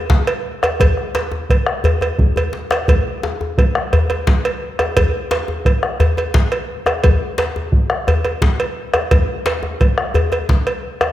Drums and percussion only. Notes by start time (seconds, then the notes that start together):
0.10 bombo low, djembe slap
0.27 cowbell, djembe slap
0.63 bombo rim, cowbell, djembe tone
0.80 bombo rim, bombo low, cowbell, djembe bass
0.97 bombo rim
1.15 cowbell, djembe slap
1.32 djembe slap, djembe tone
1.50 bombo low, cowbell
1.67 bombo rim, djembe slap
1.84 cowbell, djembe bass
2.01 bombo rim, cowbell, djembe bass
2.19 bombo low, djembe bass
2.36 cowbell, djembe bass
2.53 djembe slap
2.71 bombo rim, cowbell, djembe slap
2.88 bombo low, cowbell, djembe bass
3.23 djembe slap
3.41 djembe tone
3.58 bombo low, cowbell
3.75 bombo rim
3.93 bombo rim, cowbell, djembe slap, djembe bass
4.10 cowbell, djembe tone
4.27 bombo low, djembe slap
4.45 cowbell, djembe slap
4.79 bombo rim, cowbell, djembe tone
4.96 bombo low, cowbell, djembe bass
5.31 cowbell, djembe slap
5.48 djembe tone
5.65 bombo low, cowbell
5.83 bombo rim
6.00 bombo rim, cowbell, djembe slap, djembe bass
6.17 cowbell, djembe tone
6.34 bombo low, djembe slap
6.51 cowbell, djembe slap
6.86 bombo rim, cowbell, djembe tone
7.03 bombo low, cowbell, djembe bass
7.38 cowbell, djembe slap
7.56 djembe tone
7.72 bombo low
7.90 bombo rim
8.07 bombo rim, cowbell, djembe slap, djembe bass
8.25 cowbell, djembe tone
8.42 bombo low, djembe slap
8.60 cowbell, djembe slap
8.94 bombo rim, cowbell, djembe tone
9.11 bombo rim, bombo low, cowbell, djembe slap, djembe bass
9.46 bombo rim, cowbell, djembe slap
9.63 bombo rim, djembe slap, djembe tone
9.80 bombo low, cowbell, djembe slap
9.98 bombo rim
10.14 cowbell, djembe bass
10.32 bombo rim, cowbell, djembe slap, djembe tone
10.49 bombo low, djembe slap
10.67 cowbell
11.01 bombo rim, cowbell, djembe slap, djembe tone